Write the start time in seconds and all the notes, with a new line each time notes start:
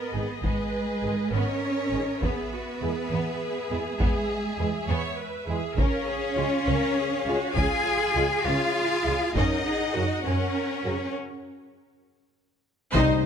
Already playing: B3 A#4 B4 D#5
0.13 G#1 D#3 G#3 D#4 G#4
0.43 G#1 G#3 B3 G#4 B4, taiko
1.03 G#1 D#3 G#3 D#4 G#4
1.32 G#1 B3 C#4 A#4 C#5
1.92 G#1 D#3 G#3 D#4 G#4
2.22 E2 B3 G#4 B4 E5, taiko
2.52 F#4
2.81 E2 E3 G#3 E4 G#4
3.10 E2 B3
3.69 E2 E3 G#3 E4 G#4
3.99 E2 G#3 B3 G#4, taiko
4.58 E2 E3 G#3 E4 G#4
4.88 E2 B3 C#5
5.18 B4
5.47 E2 E3 G#3 E4 G#4
5.77 C#2 C#4 A#4 C#5 F5, taiko
6.07 G#4
6.36 C#2 C#3 G#3 F4 G#4
6.67 C#2 C#4 A#4
6.97 G#4
7.26 C#2 C#3 G#3 F4 F#4 G#4
7.55 C#2 C#4 F4 G#4 G#5, taiko
8.16 C#2 C#3 G#3 F4 G#4
8.44 C#2 C#4 F4 G#4 F5
9.05 C#2 C#3 G#3 F4 G#4
9.34 F#2 C#4 D#4 A#4 D#5 F#5, taiko
9.65 G#4
9.94 F#2 C#3 F#3 F#4 A#4
10.24 F#2 C#4 A#4 C#5
10.84 F#2 C#3 F#3 F#4 A#4
12.93 C2 C3 G3 C4 D#4 C5 D#5, taiko, tam-tam